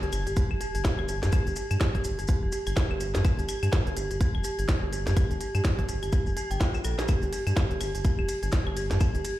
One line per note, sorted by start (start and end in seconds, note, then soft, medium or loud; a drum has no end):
0.00 0.10 G1 medium
0.00 0.07 G4 medium
0.00 closed hi-hat soft
0.00 sub drop medium
0.12 0.22 G1 medium
0.12 0.22 G4 medium
0.12 closed hi-hat medium
0.12 claves medium
0.12 maracas medium
0.27 0.34 G1 loud
0.27 0.29 G4 medium
0.27 closed hi-hat soft
0.27 maracas soft
0.36 0.43 G4 medium
0.36 kick loud
0.36 closed hi-hat medium
0.36 maracas medium
0.51 0.58 F1 medium
0.51 0.57 G4 medium
0.51 claves medium
0.61 0.64 G4 medium
0.61 closed hi-hat medium
0.61 maracas loud
0.75 0.82 G1 medium
0.75 0.79 G4 medium
0.75 closed hi-hat soft
0.75 maracas soft
0.85 0.94 G4 medium
0.85 kick loud
0.85 snare loud
0.85 closed hi-hat medium
0.85 maracas soft
0.99 1.24 G1 medium
0.99 1.01 G4 medium
0.99 claves medium
1.08 1.15 G4 medium
1.08 closed hi-hat medium
1.08 maracas medium
1.23 1.30 G2 loud
1.23 1.29 G4 medium
1.23 snare medium
1.23 closed hi-hat soft
1.23 maracas soft
1.32 1.36 G4 medium
1.32 kick loud
1.32 closed hi-hat medium
1.32 claves medium
1.32 maracas medium
1.47 1.54 G1 loud
1.47 1.51 G4 medium
1.47 closed hi-hat soft
1.47 maracas soft
1.56 1.66 G4 medium
1.56 closed hi-hat medium
1.56 maracas loud
1.71 1.78 G2 loud
1.71 1.73 G4 medium
1.71 closed hi-hat soft
1.71 claves medium
1.71 maracas soft
1.81 1.87 G4 medium
1.81 kick loud
1.81 snare loud
1.81 closed hi-hat medium
1.81 claves medium
1.81 maracas medium
1.95 2.02 G1 medium
1.95 2.01 G4 medium
1.95 kick medium
1.95 closed hi-hat soft
2.04 2.14 G1 loud
2.04 2.08 G4 medium
2.04 closed hi-hat loud
2.04 maracas medium
2.19 2.26 G1 loud
2.19 2.23 G4 medium
2.19 closed hi-hat soft
2.19 maracas soft
2.27 2.38 G4 medium
2.27 kick loud
2.27 closed hi-hat medium
2.27 maracas medium
2.43 2.50 F1 medium
2.43 2.45 G4 medium
2.52 2.59 G4 medium
2.52 closed hi-hat loud
2.52 maracas loud
2.66 2.74 G1 medium
2.66 2.73 G4 medium
2.66 closed hi-hat soft
2.66 claves medium
2.66 maracas soft
2.77 2.80 G4 medium
2.77 kick loud
2.77 snare loud
2.77 closed hi-hat medium
2.77 maracas medium
2.91 3.16 G1 medium
2.91 2.95 G4 medium
2.91 claves medium
3.00 3.10 G4 medium
3.00 closed hi-hat medium
3.00 maracas medium
3.15 3.22 G2 loud
3.15 3.17 G4 medium
3.15 snare medium
3.15 closed hi-hat soft
3.15 maracas soft
3.25 3.31 G4 medium
3.25 kick loud
3.25 closed hi-hat soft
3.25 claves medium
3.25 maracas medium
3.39 3.46 G1 loud
3.39 3.45 G4 medium
3.39 closed hi-hat soft
3.39 maracas soft
3.49 3.52 G4 medium
3.49 closed hi-hat medium
3.49 claves medium
3.49 maracas loud
3.63 3.70 G2 loud
3.63 3.67 G4 medium
3.63 closed hi-hat soft
3.63 claves medium
3.63 maracas soft
3.72 kick loud
3.72 snare loud
3.72 closed hi-hat medium
3.72 maracas medium
3.87 3.94 G1 medium
3.87 3.89 G4 medium
3.87 closed hi-hat soft
3.97 4.06 G1 loud
3.97 4.03 G4 medium
3.97 closed hi-hat loud
3.97 maracas medium
4.11 4.18 G1 medium
4.11 4.17 G4 medium
4.11 closed hi-hat soft
4.11 maracas soft
4.21 4.24 G4 medium
4.21 kick loud
4.21 closed hi-hat medium
4.21 maracas medium
4.35 4.42 F1 medium
4.35 4.39 G4 medium
4.35 claves medium
4.44 4.54 G4 medium
4.44 closed hi-hat loud
4.44 maracas loud
4.59 4.66 G1 loud
4.59 4.61 G4 medium
4.59 closed hi-hat soft
4.59 maracas soft
4.68 kick loud
4.68 snare loud
4.68 closed hi-hat soft
4.68 maracas soft
4.83 5.08 G1 loud
4.83 4.89 G4 medium
4.93 4.96 G4 medium
4.93 closed hi-hat medium
4.93 maracas loud
5.07 5.14 G2 loud
5.07 5.11 G4 medium
5.07 snare medium
5.07 closed hi-hat soft
5.07 maracas soft
5.17 5.26 G4 medium
5.17 kick loud
5.17 closed hi-hat soft
5.17 claves medium
5.17 maracas medium
5.31 5.38 G1 loud
5.31 5.33 G4 medium
5.31 closed hi-hat soft
5.31 maracas soft
5.41 5.47 G4 medium
5.41 closed hi-hat medium
5.41 maracas medium
5.55 5.62 G2 loud
5.55 5.61 G4 medium
5.55 closed hi-hat soft
5.55 claves medium
5.55 maracas soft
5.64 5.68 G4 medium
5.64 kick loud
5.64 snare medium
5.64 closed hi-hat soft
5.64 maracas medium
5.79 5.86 G1 medium
5.79 5.83 G4 medium
5.79 kick medium
5.79 closed hi-hat soft
5.89 5.98 G1 medium
5.89 5.98 G4 medium
5.89 closed hi-hat medium
5.89 maracas medium
6.02 6.10 G1 loud
6.02 6.05 G4 medium
6.02 closed hi-hat soft
6.02 claves medium
6.02 maracas soft
6.12 6.19 G4 medium
6.12 kick loud
6.12 closed hi-hat medium
6.12 maracas medium
6.26 6.34 F1 medium
6.26 6.33 G4 medium
6.26 maracas soft
6.37 6.40 G4 loud
6.37 closed hi-hat medium
6.37 maracas loud
6.51 6.58 G1 medium
6.51 6.55 G5 medium
6.51 closed hi-hat soft
6.51 maracas soft
6.61 6.67 F4 medium
6.61 kick loud
6.61 snare medium
6.61 closed hi-hat soft
6.61 maracas medium
6.74 claves medium
6.74 maracas soft
6.84 6.94 A#1 medium
6.84 6.91 A4 medium
6.84 closed hi-hat medium
6.84 claves medium
6.84 maracas loud
6.99 7.03 G4 medium
6.99 snare medium
6.99 closed hi-hat soft
6.99 maracas soft
7.08 7.18 G4 medium
7.08 kick loud
7.08 closed hi-hat medium
7.08 claves medium
7.08 maracas medium
7.22 7.30 G1 loud
7.22 7.25 G4 medium
7.22 closed hi-hat soft
7.22 maracas soft
7.33 7.39 G4 medium
7.33 closed hi-hat medium
7.33 ride medium
7.33 maracas medium
7.47 7.54 G2 loud
7.47 7.53 G4 medium
7.47 closed hi-hat soft
7.47 claves medium
7.47 maracas soft
7.57 7.60 G4 medium
7.57 kick loud
7.57 snare medium
7.57 closed hi-hat soft
7.57 maracas medium
7.71 7.78 G1 medium
7.71 7.75 G4 medium
7.71 closed hi-hat soft
7.81 7.90 G1 loud
7.81 7.90 G4 medium
7.81 closed hi-hat medium
7.81 ride medium
7.81 claves medium
7.81 maracas medium
7.95 8.02 G1 medium
7.95 7.97 G4 medium
7.95 closed hi-hat soft
7.95 maracas soft
8.04 8.11 G4 medium
8.04 kick loud
8.04 closed hi-hat medium
8.04 maracas medium
8.19 8.26 F1 medium
8.19 8.25 G4 medium
8.19 claves medium
8.29 8.32 G4 medium
8.29 closed hi-hat medium
8.29 ride medium
8.29 maracas medium
8.43 8.50 G1 medium
8.43 8.47 G4 medium
8.43 closed hi-hat soft
8.43 maracas soft
8.52 8.62 G4 medium
8.52 kick loud
8.52 snare medium
8.52 closed hi-hat soft
8.52 maracas medium
8.67 8.92 G1 medium
8.67 8.69 G4 medium
8.67 claves medium
8.77 8.83 G4 medium
8.77 closed hi-hat medium
8.77 ride medium
8.77 maracas loud
8.91 8.98 G2 loud
8.91 8.97 G4 medium
8.91 snare medium
8.91 closed hi-hat soft
8.91 maracas soft
9.00 9.04 G4 medium
9.00 kick loud
9.00 closed hi-hat medium
9.00 claves medium
9.00 maracas medium
9.15 9.22 G1 loud
9.15 9.19 G4 medium
9.15 closed hi-hat soft
9.15 maracas soft
9.25 9.34 G4 medium
9.25 closed hi-hat medium
9.25 ride medium
9.25 maracas medium